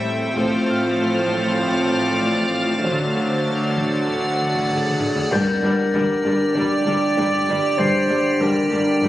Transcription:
Already playing: double bass section A1, cello section A2, viola section G3 A3, violin section C4 A4 E5, ambient pad A4 C5 G5
0.05 cello section A3
0.35 double bass section A1, cello section A2, viola section F3 A3, violin section C4 A4 C5 F6 A6, ambient pad C5 F5, taiko
0.67 cello section A2, celesta F6
0.99 cello section A2
1.29 cello section A2, taiko
1.60 cello section A2, violin section D5, taiko
1.91 cello section A2
2.07 taiko
2.22 cello section A2
2.52 cello section A3
2.83 double bass section D2, cello section D3, viola section F#3 A3, violin section D4 A4 C5, ambient pad D5 F#5, taiko, cymbal swell
3.15 cello section D3
3.46 cello section D3
3.77 cello section D3, taiko
4.08 cello section D3, taiko
4.39 cello section D3
4.54 taiko
4.70 cello section D3, clarinet G#4, taiko low-mid
4.85 taiko mid
5.00 cello section D4, taiko low-mid
5.16 taiko low
5.31 double bass section G1, cello section G2, french horn section D3 D4, viola section G3, violin section D4 A#4, ambient pad G4 D5 G5, clarinet A#4, celesta G6, taiko, sub drop
5.62 double bass section G1, cello section G2, viola section G3, violin section D4 A#4
5.92 double bass section G1, cello section G2 G3, viola section G3, violin section D4 A#4, taiko
6.09 taiko low
6.24 double bass section G1, cello section G2, viola section G3, violin section D4 A#4
6.54 double bass section G1, cello section G2, viola section G3, violin section D4 A#4, clarinet D5, taiko
6.85 double bass section G1, cello section G2 G3, viola section G3, violin section D4 A#4
7.16 double bass section G1, cello section G2, viola section G3, violin section D4 A#4, taiko
7.48 double bass section G1, cello section G2 G3, viola section G3, violin section D4 A#4
7.78 double bass section G1, cello section G2, viola section G3, violin section D4 A#4, clarinet C5, celesta C7, taiko
8.08 double bass section G1, cello section G2, viola section G3, violin section D4 A#4
8.40 double bass section G1, cello section G2 G3, viola section G3, violin section D4 A#4, clarinet A#4, taiko
8.56 taiko low
8.70 double bass section G1, cello section G2, viola section G3, violin section D4 A#4
9.02 double bass section G1, cello section G2, viola section G3, violin section D4 A#4, taiko

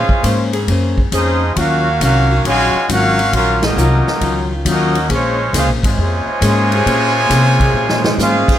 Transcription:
Already playing: trombone section G#3 C#4 F4, steel-string acoustic guitar A#3 C#4 G#4 C5, trumpet section C#4 G#4 C5 F5
0.08 muted upright bass stroke, kick
0.23 upright bass G#2, steel-string acoustic guitar A#3 C#4 G#4 C5, kick, hi-hat pedal, ride
0.52 saxophone section C#3 A#3 C4 G#4, ride
0.67 upright bass F#2, steel-string acoustic guitar A#3 C#4 G#4, kick, ride
0.72 steel-string acoustic guitar C5
0.98 kick
1.12 upright bass F2, trombone section F3 G#3 D#4, steel-string acoustic guitar A#3 C#4 G#4 C5, trumpet section C#4 G#4 C5 D#5, kick, hi-hat pedal, ride
1.55 upright bass D#2, steel-string acoustic guitar D#3 F#3 C#4 F4, trombone section A#3 C#4 F#4, kick, ride
1.59 trumpet section C#4 F#4 A#4 F5
2.00 upright bass C2, steel-string acoustic guitar D#3 F#3 C#4 F4, trombone section A#3 C#4 F#4, trumpet section C#4 F#4 A#4, kick, hi-hat pedal, ride
2.05 trumpet section F5
2.30 saxophone section D#3 F#3 C#4 F#4
2.44 upright bass A#1, trombone section A#2 C#3 G#3, steel-string acoustic guitar D#3 F#3 C#4 F4, trumpet section F#4 C#5 F5 G#5, kick, ride
2.74 muted upright bass stroke
2.88 upright bass G#1, steel-string acoustic guitar D#3 F#3 C#4 F4, trombone section A#3 C#4 F#4, trumpet section C#4, kick, hi-hat pedal, ride
2.92 trumpet section A#4 F5 F#5
3.19 ride
3.32 upright bass A#1, steel-string acoustic guitar D#3 F#3 C#4 F4, trombone section A#3 C#4 F4, trumpet section C#4 F#4 A#4 F5, kick, ride
3.62 trombone section F#3 A#3 D#4, trumpet section C#4 F#4 A#4 D#5, snare, ride
3.76 upright bass C2, steel-string acoustic guitar D#3 F#3 C#4 F4, saxophone section D#3 F#3 C#4 F4, hi-hat pedal
4.07 snare
4.20 upright bass C#2, steel-string acoustic guitar D#3 F#3 C#4 F4, saxophone section D#3 F#3 C#4 F4, kick, ride
4.65 upright bass D#2, steel-string acoustic guitar D#3 F#3 C#4 F4, trombone section F#3 A#3 D#4, kick, hi-hat pedal, ride
4.69 trumpet section C#4 F#4 A#4 D#5
4.95 ride
5.08 upright bass A#1, trombone section F3 G#3 C#4, steel-string acoustic guitar A#3 C#4 G#4 C5, kick, ride
5.14 trumpet section G#3 F4 C5 C#5
5.53 upright bass C#2, trombone section G#3 C#4 F4, steel-string acoustic guitar A#3 C#4 G#4 C5, kick, snare, hi-hat pedal, ride
5.58 trumpet section C#4 G#4 C5 F5
5.67 upright bass A#1
5.83 upright bass G#1, trombone section C3 F3 G#3, trumpet section F4 C#5 G#5, kick, ride
5.87 trumpet section C5
5.97 upright bass F2, steel-string acoustic guitar A#3 C#4 G#4 C5, kick
6.26 muted upright bass stroke
6.41 upright bass G#2, steel-string acoustic guitar A#3 C#4 G#4 C5, kick, hi-hat pedal, ride
6.72 saxophone section C3 G#3 A#3 G#4, ride
6.85 upright bass A#2, steel-string acoustic guitar A#3 C#4 G#4 C5, kick, ride
7.29 upright bass C3, steel-string acoustic guitar A#3 C#4 G#4 C5, kick, snare, hi-hat pedal, ride
7.59 saxophone section C3 G#3 A#3 G#4, kick, ride
7.73 upright bass A#2, steel-string acoustic guitar A#3 C#4 G#4 C5
7.89 snare
8.04 snare
8.17 upright bass G#2, trombone section G#3 C#4 F4, steel-string acoustic guitar A#3 C#4 G#4 C5, trumpet section G#4, snare, hi-hat pedal
8.22 trumpet section C#4 C5 F5
8.48 muted upright bass stroke, kick, crash

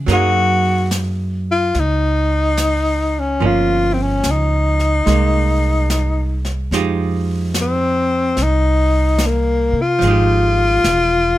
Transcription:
Already playing: hollow-body jazz guitar F#4
0.06 upright bass F#2, hollow-body jazz guitar F#3 A#3 D#4, brush sweep, snare
0.12 tenor saxophone F#4, hollow-body jazz guitar G#4
0.91 snare, hi-hat pedal
1.51 tenor saxophone F4
1.75 upright bass C#2, brush sweep, snare
1.79 tenor saxophone D#4
2.57 snare, hi-hat pedal
3.19 tenor saxophone C#4
3.40 upright bass G1, hollow-body jazz guitar F3 A#3 C#4, brush sweep
3.46 tenor saxophone F4
3.93 tenor saxophone C4
4.02 tenor saxophone C#4
4.24 upright bass C#2, snare, hi-hat pedal
4.31 tenor saxophone D#4
4.79 snare
5.06 upright bass C2, hollow-body jazz guitar G#3 A#3, brush sweep, snare
5.90 snare, hi-hat pedal
6.45 snare
6.71 upright bass F2, hollow-body jazz guitar F3 G#3 D#4 G4, brush sweep, snare
7.54 snare, hi-hat pedal
7.61 tenor saxophone C4
8.37 upright bass C2, brush sweep, snare
8.43 tenor saxophone D#4
9.18 snare, hi-hat pedal
9.26 tenor saxophone A#3
9.73 upright bass C3
9.82 tenor saxophone F4
9.99 upright bass G#1, hollow-body jazz guitar F3, brush sweep, snare
10.04 hollow-body jazz guitar G#3 D#4
10.10 hollow-body jazz guitar G4
10.84 upright bass E1, snare, hi-hat pedal

